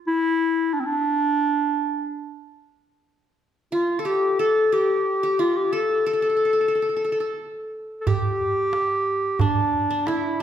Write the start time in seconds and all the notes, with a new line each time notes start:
0.07 E4
0.73 D4
0.80 C4
0.86 D4
3.72 F4
3.99 A4
4.05 G4
4.39 A4
4.72 G4
5.23 G4
5.39 F4
5.56 G4
5.73 A4
6.06 A4
6.13 A4
6.22 A4
6.29 A4
6.37 A4
6.45 A4
6.53 A4
6.61 A4
6.68 A4
6.75 A4
6.82 A4
6.96 A4
7.04 A4
7.12 A4
7.20 A4
8.00 A4
8.07 G4, darbuka dum
8.40 darbuka ka
8.57 darbuka ka
8.73 darbuka tek
9.24 darbuka ka
9.39 D4, darbuka dum
9.90 D4
10.07 E4, darbuka tek
10.24 darbuka ka